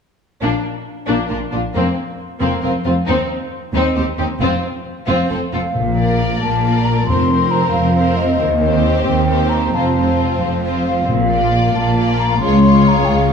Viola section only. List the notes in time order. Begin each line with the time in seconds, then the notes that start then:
0.41 D4
1.07 D4
1.30 D4
1.51 D4
1.75 C4
2.40 C4
2.64 C4
2.86 C4
3.09 C4
3.75 C4
3.97 C4
4.19 C4
4.41 C4
5.07 C4
5.31 C4
5.54 C4
5.97 A#3
6.63 A#3
7.09 C4
7.30 C4
7.97 C4
8.62 C4
9.29 C4
9.73 C4
9.97 C4
10.64 C4
11.31 A#3
11.98 A#3
12.42 G#3
12.64 G#3